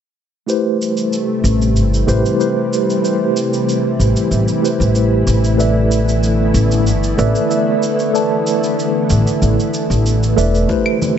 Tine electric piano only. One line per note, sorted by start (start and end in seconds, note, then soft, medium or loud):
0.46 2.03 A3 medium
0.46 2.04 E4 medium
0.46 2.04 G4 medium
0.46 2.04 B4 medium
0.46 2.05 C5 medium
2.07 2.36 A3 medium
2.07 2.36 E4 medium
2.07 2.36 G4 medium
2.07 2.36 B4 medium
2.07 2.36 C5 loud
2.39 3.00 A3 medium
2.39 3.00 E4 medium
2.39 3.00 G4 medium
2.39 3.00 B4 medium
2.39 3.00 C5 medium
3.02 4.58 A3 medium
3.02 4.59 E4 medium
3.02 4.59 G4 medium
3.02 4.60 B4 medium
3.02 4.60 C5 medium
4.61 5.54 A3 medium
4.61 5.55 E4 medium
4.61 5.55 G4 medium
4.61 5.56 B4 medium
4.61 5.56 C5 medium
5.57 7.14 A3 medium
5.57 7.14 A4 medium
5.57 7.14 B4 medium
5.57 7.15 D5 medium
5.57 7.15 E5 medium
7.17 7.46 A3 medium
7.17 7.46 A4 medium
7.17 7.47 B4 medium
7.17 7.47 D5 medium
7.17 7.47 E5 loud
7.50 8.10 A3 medium
7.50 8.10 A4 medium
7.50 8.11 B4 medium
7.50 8.11 D5 medium
7.50 8.11 E5 medium
8.12 9.69 A3 medium
8.12 9.70 A4 medium
8.12 9.70 B4 medium
8.12 9.70 D5 medium
8.12 9.71 A5 medium
10.36 10.65 A3 medium
10.36 10.65 A4 medium
10.36 10.65 B4 medium
10.36 10.66 D5 medium
10.36 10.66 E5 loud
10.68 11.18 A3 medium
10.68 11.18 E4 medium
10.68 11.18 G4 medium
10.68 11.18 B4 medium
10.68 11.18 C5 medium